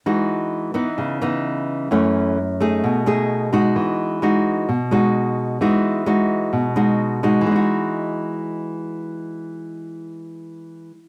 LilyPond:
\new Staff \with { instrumentName = "Nylon-string guitar" } { \time 4/4 \key e \major \tempo 4 = 130 << { <gis dis' fis'>4. <e b dis'>4 <e b dis'>4. | <e a cis'>4 r8 <a dis' gis'>4 <a dis' gis'>4 <gis dis' fis'>8~ | <gis dis' fis'>4 <gis dis' fis'>4 r8 <gis dis' fis'>4. | <gis dis' fis'>4 <gis dis' fis'>4. <gis dis' fis'>4 <gis dis' fis'>8~ |
<gis dis' fis'>4 r2. | r1 | } \\ { e2 cis2 | fis,2 b,2 | e2 b,2 | e2 b,2 |
<e gis dis' fis'>1~ | <e gis dis' fis'>1 | } >> }